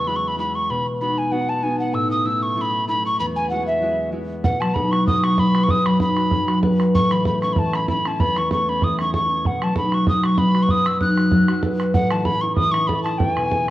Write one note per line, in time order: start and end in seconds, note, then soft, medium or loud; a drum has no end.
0.00 0.74 E2 medium
0.00 2.03 C#4 soft
0.07 0.37 G#3 soft
0.07 0.38 E4 soft
0.07 0.39 F#4 soft
0.07 0.17 B5 medium
0.16 0.29 C#6 medium
0.28 0.38 B5 medium
0.38 0.74 G#3 soft
0.38 1.07 E4 soft
0.38 1.02 F#4 soft
0.38 0.57 B5 medium
0.55 0.72 C#6 medium
0.69 1.99 B2 medium
0.69 0.87 B5 medium
1.01 1.31 B3 soft
1.01 1.32 D#4 soft
1.01 1.32 F#4 soft
1.01 1.20 B5 medium
1.18 1.33 G#5 medium
1.31 1.63 B3 soft
1.31 1.63 D#4 soft
1.31 1.64 F#4 medium
1.31 1.51 F#5 medium
1.49 1.65 A5 medium
1.63 4.74 B3 soft
1.63 2.32 D#4 soft
1.63 3.51 F#4 soft
1.63 1.79 G#5 medium
1.80 1.96 F#5 medium
1.93 3.24 A2 medium
1.93 2.10 E6 medium
2.11 2.27 D#6 medium
2.24 2.55 A3 soft
2.24 2.56 C#4 soft
2.24 2.58 E4 soft
2.24 2.44 E6 medium
2.42 2.58 C#6 medium
2.56 2.87 A3 soft
2.56 2.88 C#4 soft
2.56 2.88 E4 medium
2.56 2.62 C#6 medium
2.61 2.88 B5 medium
2.88 3.57 A3 soft
2.88 5.78 C#4 soft
2.88 3.51 E4 soft
2.88 3.04 B5 medium
3.06 3.19 C#6 medium
3.19 4.49 E2 medium
3.19 3.26 B5 medium
3.36 3.49 G#5 medium
3.50 3.81 G#3 soft
3.50 3.82 E4 soft
3.50 3.82 F#4 medium
3.50 3.66 F#5 medium
3.67 4.10 E5 medium
3.82 4.11 G#3 medium
3.82 4.12 E4 soft
3.82 4.12 F#4 medium
4.12 4.49 G#3 soft
4.12 4.82 E4 soft
4.12 4.92 F#4 soft
4.44 5.74 B2 medium
4.44 4.62 F#5 medium
4.44 bodhran medium
4.61 5.05 F#3 soft
4.61 4.76 A5 medium
4.61 bodhran medium
4.74 6.00 D#4 medium
4.74 4.93 B5 medium
4.74 bodhran medium
4.91 5.23 F#4 medium
4.91 5.06 C#6 medium
4.91 bodhran medium
5.07 5.85 F#3 medium
5.07 5.25 D#6 loud
5.07 bodhran medium
5.23 5.54 F#4 medium
5.23 5.41 C#6 loud
5.23 bodhran medium
5.38 6.62 B4 medium
5.38 5.65 B5 medium
5.38 bodhran medium
5.55 6.17 F#4 medium
5.55 bodhran medium
5.64 5.72 C#6 medium
5.69 6.99 F#2 medium
5.69 5.88 D#6 medium
5.69 bodhran medium
5.86 6.30 F#3 soft
5.86 6.01 B5 medium
5.86 bodhran medium
6.00 7.17 D#4 medium
6.00 6.60 B5 medium
6.00 bodhran medium
6.17 6.48 F#4 medium
6.17 bodhran medium
6.31 6.99 F#3 medium
6.31 bodhran medium
6.48 6.79 F#4 medium
6.48 bodhran medium
6.63 8.68 B4 medium
6.63 bodhran medium
6.79 9.23 F#4 medium
6.79 bodhran medium
6.95 8.24 A2 medium
6.95 7.14 C#6 medium
6.95 bodhran medium
7.11 7.55 E3 soft
7.11 7.26 B5 medium
7.11 bodhran medium
7.25 8.52 A3 soft
7.25 7.41 B5 medium
7.25 bodhran medium
7.42 7.74 C#4 medium
7.42 7.55 C#6 medium
7.42 bodhran medium
7.53 8.36 E3 medium
7.53 7.60 B5 medium
7.53 bodhran medium
7.59 7.77 A5 medium
7.74 8.06 C#4 medium
7.74 7.89 B5 medium
7.74 bodhran medium
7.88 9.13 E4 medium
7.88 8.09 B5 medium
7.88 bodhran medium
8.05 8.68 C#4 medium
8.05 8.22 A5 medium
8.05 bodhran medium
8.20 9.50 E2 medium
8.20 8.39 B5 loud
8.20 bodhran medium
8.36 8.81 E3 soft
8.36 8.52 C#6 medium
8.36 bodhran medium
8.51 11.85 A3 soft
8.51 8.71 C#6 medium
8.51 bodhran medium
8.68 8.99 C#4 soft
8.68 8.85 B5 medium
8.82 9.50 E3 medium
8.82 9.00 D#6 medium
8.82 bodhran medium
8.99 9.29 C#4 medium
8.99 9.13 C#6 medium
8.99 bodhran medium
9.14 9.81 E4 soft
9.14 9.48 C#6 medium
9.14 bodhran medium
9.29 12.19 C#4 soft
9.44 10.75 B2 soft
9.44 9.65 F#5 medium
9.44 bodhran medium
9.61 10.06 F#3 soft
9.61 9.77 A5 medium
9.61 bodhran medium
9.75 11.01 D#4 soft
9.75 9.95 B5 medium
9.75 bodhran medium
9.92 10.23 F#4 medium
9.92 10.08 C#6 medium
9.92 bodhran medium
10.07 10.87 F#3 soft
10.07 10.27 D#6 medium
10.07 bodhran medium
10.23 10.54 F#4 soft
10.23 10.40 C#6 medium
10.23 bodhran medium
10.38 11.63 B4 soft
10.38 10.64 B5 medium
10.38 bodhran medium
10.55 11.18 F#4 medium
10.55 bodhran medium
10.63 10.72 C#6 medium
10.69 12.00 F#2 medium
10.69 10.89 D#6 loud
10.69 bodhran medium
10.86 11.31 F#3 soft
10.86 11.01 E6 medium
10.86 bodhran medium
11.01 12.18 D#4 medium
11.01 11.60 F#6 medium
11.01 bodhran medium
11.18 11.49 F#4 medium
11.18 bodhran medium
11.32 12.00 F#3 medium
11.32 bodhran medium
11.48 11.79 F#4 medium
11.48 bodhran medium
11.63 13.69 B4 medium
11.63 bodhran medium
11.80 13.70 F#4 soft
11.80 bodhran medium
11.94 13.25 A2 medium
11.94 12.13 F#5 loud
11.94 bodhran medium
12.11 12.57 E3 soft
12.11 12.27 A5 medium
12.11 bodhran medium
12.25 13.70 C#4 medium
12.25 12.43 B5 medium
12.25 bodhran medium
12.41 12.73 E4 medium
12.41 12.55 C#6 medium
12.56 13.25 E3 medium
12.56 12.73 D#6 loud
12.56 bodhran medium
12.71 13.05 E4 soft
12.71 12.89 C#6 loud
12.71 bodhran medium
12.87 13.70 A4 medium
12.87 13.03 B5 medium
12.87 bodhran medium
13.03 13.70 E4 medium
13.03 13.19 A5 medium
13.03 bodhran medium
13.18 13.70 E2 medium
13.18 13.36 G5 medium
13.18 bodhran medium
13.36 13.70 B2 soft
13.36 13.70 G#5 medium
13.36 bodhran medium
13.50 13.70 E3 soft
13.50 bodhran medium